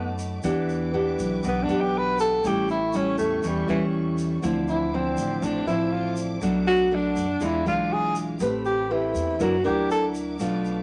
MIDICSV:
0, 0, Header, 1, 6, 480
1, 0, Start_track
1, 0, Key_signature, 0, "minor"
1, 0, Tempo, 497925
1, 425, Time_signature, 4, 2, 24, 8
1, 10436, End_track
2, 0, Start_track
2, 0, Title_t, "String section"
2, 0, Program_c, 0, 48
2, 0, Note_on_c, 0, 71, 81
2, 0, Note_on_c, 0, 75, 75
2, 0, Note_on_c, 0, 81, 71
2, 0, Note_on_c, 0, 86, 85
2, 384, Note_off_c, 0, 81, 0
2, 387, Note_off_c, 0, 86, 0
2, 401, Note_off_c, 0, 75, 0
2, 403, Note_off_c, 0, 71, 0
2, 428, Note_on_c, 0, 79, 70
2, 431, Note_on_c, 0, 71, 81
2, 432, Note_on_c, 0, 76, 73
2, 433, Note_on_c, 0, 86, 91
2, 2332, Note_off_c, 0, 71, 0
2, 2332, Note_off_c, 0, 76, 0
2, 2332, Note_off_c, 0, 86, 0
2, 2347, Note_on_c, 0, 69, 77
2, 2349, Note_on_c, 0, 76, 71
2, 2355, Note_on_c, 0, 85, 85
2, 4231, Note_off_c, 0, 79, 0
2, 4249, Note_off_c, 0, 69, 0
2, 4250, Note_off_c, 0, 76, 0
2, 4253, Note_off_c, 0, 85, 0
2, 4279, Note_on_c, 0, 86, 87
2, 4282, Note_on_c, 0, 72, 82
2, 4283, Note_on_c, 0, 76, 69
2, 4284, Note_on_c, 0, 74, 70
2, 6176, Note_off_c, 0, 72, 0
2, 6176, Note_off_c, 0, 76, 0
2, 6176, Note_on_c, 0, 81, 68
2, 6177, Note_off_c, 0, 74, 0
2, 6178, Note_on_c, 0, 71, 76
2, 6179, Note_on_c, 0, 78, 70
2, 7121, Note_on_c, 0, 68, 68
2, 7124, Note_on_c, 0, 76, 65
2, 7128, Note_on_c, 0, 77, 70
2, 7132, Note_off_c, 0, 81, 0
2, 7133, Note_off_c, 0, 71, 0
2, 7133, Note_off_c, 0, 78, 0
2, 8074, Note_off_c, 0, 86, 0
2, 8084, Note_off_c, 0, 68, 0
2, 8085, Note_off_c, 0, 76, 0
2, 8087, Note_off_c, 0, 77, 0
2, 8094, Note_on_c, 0, 69, 82
2, 8094, Note_on_c, 0, 79, 71
2, 8100, Note_on_c, 0, 83, 83
2, 9050, Note_off_c, 0, 69, 0
2, 9050, Note_off_c, 0, 79, 0
2, 9051, Note_on_c, 0, 76, 69
2, 9053, Note_off_c, 0, 83, 0
2, 9056, Note_on_c, 0, 78, 69
2, 9057, Note_on_c, 0, 86, 80
2, 9065, Note_on_c, 0, 70, 75
2, 10009, Note_off_c, 0, 76, 0
2, 10011, Note_off_c, 0, 78, 0
2, 10015, Note_off_c, 0, 70, 0
2, 10020, Note_on_c, 0, 81, 69
2, 10025, Note_on_c, 0, 77, 69
2, 10030, Note_on_c, 0, 71, 78
2, 10436, Note_off_c, 0, 71, 0
2, 10436, Note_off_c, 0, 77, 0
2, 10436, Note_off_c, 0, 81, 0
2, 10436, Note_off_c, 0, 86, 0
2, 10436, End_track
3, 0, Start_track
3, 0, Title_t, "Tenor saxophone"
3, 0, Program_c, 1, 66
3, 0, Note_on_c, 1, 59, 73
3, 194, Note_off_c, 1, 59, 0
3, 1428, Note_on_c, 1, 59, 80
3, 1573, Note_on_c, 1, 62, 77
3, 1587, Note_off_c, 1, 59, 0
3, 1742, Note_on_c, 1, 67, 87
3, 1757, Note_off_c, 1, 62, 0
3, 1907, Note_on_c, 1, 71, 101
3, 1921, Note_off_c, 1, 67, 0
3, 2118, Note_off_c, 1, 71, 0
3, 2123, Note_on_c, 1, 69, 102
3, 2382, Note_on_c, 1, 67, 87
3, 2396, Note_off_c, 1, 69, 0
3, 2605, Note_off_c, 1, 67, 0
3, 2611, Note_on_c, 1, 64, 84
3, 2856, Note_on_c, 1, 61, 80
3, 2870, Note_off_c, 1, 64, 0
3, 3059, Note_off_c, 1, 61, 0
3, 3065, Note_on_c, 1, 57, 76
3, 3345, Note_on_c, 1, 55, 74
3, 3360, Note_off_c, 1, 57, 0
3, 3557, Note_off_c, 1, 55, 0
3, 3563, Note_on_c, 1, 52, 80
3, 3702, Note_off_c, 1, 52, 0
3, 4524, Note_on_c, 1, 64, 82
3, 4771, Note_on_c, 1, 60, 78
3, 4785, Note_off_c, 1, 64, 0
3, 5243, Note_on_c, 1, 62, 71
3, 5258, Note_off_c, 1, 60, 0
3, 5459, Note_off_c, 1, 62, 0
3, 5465, Note_on_c, 1, 64, 90
3, 5712, Note_on_c, 1, 65, 88
3, 5727, Note_off_c, 1, 64, 0
3, 5950, Note_off_c, 1, 65, 0
3, 6431, Note_on_c, 1, 66, 107
3, 6699, Note_on_c, 1, 62, 85
3, 6713, Note_off_c, 1, 66, 0
3, 7173, Note_on_c, 1, 64, 83
3, 7188, Note_off_c, 1, 62, 0
3, 7396, Note_off_c, 1, 64, 0
3, 7402, Note_on_c, 1, 65, 87
3, 7642, Note_on_c, 1, 68, 96
3, 7656, Note_off_c, 1, 65, 0
3, 7874, Note_off_c, 1, 68, 0
3, 8347, Note_on_c, 1, 67, 90
3, 8603, Note_on_c, 1, 64, 74
3, 8618, Note_off_c, 1, 67, 0
3, 9087, Note_on_c, 1, 66, 83
3, 9101, Note_off_c, 1, 64, 0
3, 9304, Note_off_c, 1, 66, 0
3, 9309, Note_on_c, 1, 67, 86
3, 9531, Note_off_c, 1, 67, 0
3, 9557, Note_on_c, 1, 69, 87
3, 9698, Note_off_c, 1, 69, 0
3, 10436, End_track
4, 0, Start_track
4, 0, Title_t, "Nylon-string guitar"
4, 0, Program_c, 2, 24
4, 0, Note_on_c, 2, 54, 62
4, 0, Note_on_c, 2, 57, 68
4, 0, Note_on_c, 2, 63, 64
4, 383, Note_off_c, 2, 57, 0
4, 387, Note_off_c, 2, 63, 0
4, 396, Note_off_c, 2, 54, 0
4, 418, Note_on_c, 2, 52, 59
4, 421, Note_on_c, 2, 59, 62
4, 426, Note_on_c, 2, 62, 59
4, 431, Note_on_c, 2, 67, 65
4, 864, Note_off_c, 2, 59, 0
4, 869, Note_off_c, 2, 62, 0
4, 869, Note_off_c, 2, 67, 0
4, 901, Note_on_c, 2, 59, 55
4, 907, Note_on_c, 2, 67, 67
4, 908, Note_on_c, 2, 62, 58
4, 1360, Note_off_c, 2, 52, 0
4, 1386, Note_on_c, 2, 47, 63
4, 1586, Note_off_c, 2, 59, 0
4, 1589, Note_off_c, 2, 67, 0
4, 1590, Note_off_c, 2, 62, 0
4, 1626, Note_on_c, 2, 59, 61
4, 1631, Note_on_c, 2, 62, 68
4, 1637, Note_on_c, 2, 67, 66
4, 2309, Note_off_c, 2, 59, 0
4, 2311, Note_off_c, 2, 62, 0
4, 2314, Note_off_c, 2, 67, 0
4, 2323, Note_off_c, 2, 47, 0
4, 2355, Note_on_c, 2, 45, 60
4, 2357, Note_on_c, 2, 55, 58
4, 2360, Note_on_c, 2, 61, 54
4, 2364, Note_on_c, 2, 64, 61
4, 2661, Note_off_c, 2, 55, 0
4, 2664, Note_off_c, 2, 61, 0
4, 2664, Note_off_c, 2, 64, 0
4, 2831, Note_on_c, 2, 55, 59
4, 2836, Note_on_c, 2, 61, 52
4, 2842, Note_on_c, 2, 64, 66
4, 3288, Note_off_c, 2, 45, 0
4, 3311, Note_on_c, 2, 52, 55
4, 3511, Note_off_c, 2, 55, 0
4, 3514, Note_off_c, 2, 61, 0
4, 3517, Note_off_c, 2, 64, 0
4, 3550, Note_on_c, 2, 55, 64
4, 3557, Note_on_c, 2, 61, 64
4, 3564, Note_on_c, 2, 64, 66
4, 4232, Note_off_c, 2, 55, 0
4, 4233, Note_off_c, 2, 61, 0
4, 4238, Note_off_c, 2, 64, 0
4, 4246, Note_off_c, 2, 52, 0
4, 4263, Note_on_c, 2, 50, 58
4, 4268, Note_on_c, 2, 53, 60
4, 4271, Note_on_c, 2, 60, 53
4, 4275, Note_on_c, 2, 64, 69
4, 4708, Note_off_c, 2, 53, 0
4, 4712, Note_off_c, 2, 60, 0
4, 4712, Note_off_c, 2, 64, 0
4, 4761, Note_on_c, 2, 53, 59
4, 4765, Note_on_c, 2, 60, 58
4, 4769, Note_on_c, 2, 64, 66
4, 5202, Note_off_c, 2, 50, 0
4, 5235, Note_on_c, 2, 45, 59
4, 5436, Note_off_c, 2, 53, 0
4, 5439, Note_off_c, 2, 60, 0
4, 5439, Note_off_c, 2, 64, 0
4, 5468, Note_on_c, 2, 53, 61
4, 5473, Note_on_c, 2, 60, 62
4, 5479, Note_on_c, 2, 64, 76
4, 6150, Note_off_c, 2, 53, 0
4, 6152, Note_off_c, 2, 60, 0
4, 6155, Note_off_c, 2, 64, 0
4, 6167, Note_off_c, 2, 45, 0
4, 6185, Note_on_c, 2, 47, 58
4, 6191, Note_on_c, 2, 54, 54
4, 6194, Note_on_c, 2, 57, 58
4, 6194, Note_on_c, 2, 62, 66
4, 6630, Note_off_c, 2, 54, 0
4, 6632, Note_off_c, 2, 62, 0
4, 6633, Note_off_c, 2, 57, 0
4, 6662, Note_on_c, 2, 54, 58
4, 6667, Note_on_c, 2, 57, 58
4, 6671, Note_on_c, 2, 62, 69
4, 6987, Note_off_c, 2, 54, 0
4, 6990, Note_off_c, 2, 57, 0
4, 6991, Note_off_c, 2, 62, 0
4, 7122, Note_off_c, 2, 47, 0
4, 7140, Note_on_c, 2, 52, 60
4, 7145, Note_on_c, 2, 62, 62
4, 7146, Note_on_c, 2, 56, 62
4, 7148, Note_on_c, 2, 65, 65
4, 7347, Note_off_c, 2, 56, 0
4, 7348, Note_off_c, 2, 62, 0
4, 7349, Note_off_c, 2, 65, 0
4, 7382, Note_on_c, 2, 56, 62
4, 7387, Note_on_c, 2, 62, 61
4, 7393, Note_on_c, 2, 65, 73
4, 8066, Note_off_c, 2, 56, 0
4, 8069, Note_off_c, 2, 62, 0
4, 8070, Note_off_c, 2, 65, 0
4, 8080, Note_off_c, 2, 52, 0
4, 8105, Note_on_c, 2, 57, 59
4, 8109, Note_on_c, 2, 60, 59
4, 8115, Note_on_c, 2, 67, 63
4, 8116, Note_on_c, 2, 71, 63
4, 8548, Note_off_c, 2, 60, 0
4, 8552, Note_off_c, 2, 67, 0
4, 8552, Note_off_c, 2, 71, 0
4, 8584, Note_on_c, 2, 60, 58
4, 8588, Note_on_c, 2, 67, 60
4, 8590, Note_on_c, 2, 71, 65
4, 9042, Note_off_c, 2, 57, 0
4, 9046, Note_off_c, 2, 60, 0
4, 9048, Note_off_c, 2, 67, 0
4, 9048, Note_off_c, 2, 71, 0
4, 9063, Note_on_c, 2, 62, 57
4, 9063, Note_on_c, 2, 64, 57
4, 9064, Note_on_c, 2, 54, 62
4, 9072, Note_on_c, 2, 70, 70
4, 9205, Note_off_c, 2, 62, 0
4, 9205, Note_off_c, 2, 64, 0
4, 9210, Note_off_c, 2, 70, 0
4, 9294, Note_on_c, 2, 62, 73
4, 9297, Note_on_c, 2, 64, 57
4, 9299, Note_on_c, 2, 70, 69
4, 9981, Note_off_c, 2, 62, 0
4, 9982, Note_off_c, 2, 64, 0
4, 9984, Note_off_c, 2, 70, 0
4, 10001, Note_off_c, 2, 54, 0
4, 10026, Note_on_c, 2, 47, 61
4, 10030, Note_on_c, 2, 57, 62
4, 10033, Note_on_c, 2, 62, 58
4, 10034, Note_on_c, 2, 65, 63
4, 10436, Note_off_c, 2, 47, 0
4, 10436, Note_off_c, 2, 57, 0
4, 10436, Note_off_c, 2, 62, 0
4, 10436, Note_off_c, 2, 65, 0
4, 10436, End_track
5, 0, Start_track
5, 0, Title_t, "Upright bass"
5, 0, Program_c, 3, 32
5, 0, Note_on_c, 3, 42, 83
5, 384, Note_off_c, 3, 42, 0
5, 421, Note_on_c, 3, 40, 91
5, 1106, Note_off_c, 3, 40, 0
5, 1144, Note_on_c, 3, 35, 93
5, 1369, Note_off_c, 3, 35, 0
5, 1387, Note_on_c, 3, 35, 96
5, 1611, Note_off_c, 3, 35, 0
5, 1627, Note_on_c, 3, 35, 83
5, 2309, Note_off_c, 3, 35, 0
5, 2355, Note_on_c, 3, 33, 97
5, 3033, Note_off_c, 3, 33, 0
5, 3067, Note_on_c, 3, 40, 88
5, 3291, Note_off_c, 3, 40, 0
5, 3315, Note_on_c, 3, 40, 90
5, 3535, Note_off_c, 3, 40, 0
5, 3551, Note_on_c, 3, 40, 80
5, 4231, Note_off_c, 3, 40, 0
5, 4273, Note_on_c, 3, 38, 97
5, 4952, Note_off_c, 3, 38, 0
5, 4989, Note_on_c, 3, 33, 85
5, 5212, Note_off_c, 3, 33, 0
5, 5226, Note_on_c, 3, 33, 96
5, 5450, Note_off_c, 3, 33, 0
5, 5466, Note_on_c, 3, 33, 86
5, 6148, Note_off_c, 3, 33, 0
5, 6184, Note_on_c, 3, 35, 94
5, 6867, Note_off_c, 3, 35, 0
5, 6904, Note_on_c, 3, 42, 85
5, 7129, Note_off_c, 3, 42, 0
5, 7138, Note_on_c, 3, 40, 100
5, 7366, Note_off_c, 3, 40, 0
5, 7387, Note_on_c, 3, 35, 78
5, 8068, Note_off_c, 3, 35, 0
5, 8099, Note_on_c, 3, 33, 97
5, 8784, Note_off_c, 3, 33, 0
5, 8815, Note_on_c, 3, 40, 89
5, 9043, Note_off_c, 3, 40, 0
5, 9062, Note_on_c, 3, 30, 104
5, 9287, Note_off_c, 3, 30, 0
5, 9301, Note_on_c, 3, 38, 84
5, 9984, Note_off_c, 3, 38, 0
5, 10020, Note_on_c, 3, 35, 93
5, 10436, Note_off_c, 3, 35, 0
5, 10436, End_track
6, 0, Start_track
6, 0, Title_t, "Drums"
6, 181, Note_on_c, 9, 82, 71
6, 277, Note_off_c, 9, 82, 0
6, 413, Note_on_c, 9, 82, 64
6, 510, Note_off_c, 9, 82, 0
6, 663, Note_on_c, 9, 82, 27
6, 759, Note_off_c, 9, 82, 0
6, 1148, Note_on_c, 9, 82, 69
6, 1244, Note_off_c, 9, 82, 0
6, 1382, Note_on_c, 9, 82, 60
6, 1478, Note_off_c, 9, 82, 0
6, 1625, Note_on_c, 9, 82, 27
6, 1721, Note_off_c, 9, 82, 0
6, 2108, Note_on_c, 9, 82, 70
6, 2204, Note_off_c, 9, 82, 0
6, 2351, Note_on_c, 9, 82, 62
6, 2448, Note_off_c, 9, 82, 0
6, 2588, Note_on_c, 9, 82, 29
6, 2684, Note_off_c, 9, 82, 0
6, 2824, Note_on_c, 9, 82, 58
6, 2921, Note_off_c, 9, 82, 0
6, 3067, Note_on_c, 9, 82, 69
6, 3164, Note_off_c, 9, 82, 0
6, 3308, Note_on_c, 9, 82, 64
6, 3405, Note_off_c, 9, 82, 0
6, 3552, Note_on_c, 9, 82, 26
6, 3649, Note_off_c, 9, 82, 0
6, 4030, Note_on_c, 9, 82, 69
6, 4127, Note_off_c, 9, 82, 0
6, 4270, Note_on_c, 9, 82, 64
6, 4366, Note_off_c, 9, 82, 0
6, 4511, Note_on_c, 9, 82, 27
6, 4608, Note_off_c, 9, 82, 0
6, 4985, Note_on_c, 9, 82, 69
6, 5081, Note_off_c, 9, 82, 0
6, 5229, Note_on_c, 9, 82, 67
6, 5325, Note_off_c, 9, 82, 0
6, 5468, Note_on_c, 9, 82, 26
6, 5565, Note_off_c, 9, 82, 0
6, 5940, Note_on_c, 9, 82, 67
6, 6037, Note_off_c, 9, 82, 0
6, 6184, Note_on_c, 9, 82, 64
6, 6280, Note_off_c, 9, 82, 0
6, 6427, Note_on_c, 9, 82, 28
6, 6524, Note_off_c, 9, 82, 0
6, 6903, Note_on_c, 9, 82, 68
6, 6999, Note_off_c, 9, 82, 0
6, 7139, Note_on_c, 9, 82, 61
6, 7235, Note_off_c, 9, 82, 0
6, 7386, Note_on_c, 9, 82, 25
6, 7482, Note_off_c, 9, 82, 0
6, 7859, Note_on_c, 9, 82, 68
6, 7955, Note_off_c, 9, 82, 0
6, 8093, Note_on_c, 9, 82, 71
6, 8189, Note_off_c, 9, 82, 0
6, 8339, Note_on_c, 9, 82, 28
6, 8435, Note_off_c, 9, 82, 0
6, 8820, Note_on_c, 9, 82, 69
6, 8916, Note_off_c, 9, 82, 0
6, 9061, Note_on_c, 9, 82, 62
6, 9158, Note_off_c, 9, 82, 0
6, 9299, Note_on_c, 9, 82, 25
6, 9395, Note_off_c, 9, 82, 0
6, 9549, Note_on_c, 9, 82, 54
6, 9646, Note_off_c, 9, 82, 0
6, 9780, Note_on_c, 9, 82, 66
6, 9877, Note_off_c, 9, 82, 0
6, 10018, Note_on_c, 9, 82, 67
6, 10114, Note_off_c, 9, 82, 0
6, 10264, Note_on_c, 9, 82, 27
6, 10361, Note_off_c, 9, 82, 0
6, 10436, End_track
0, 0, End_of_file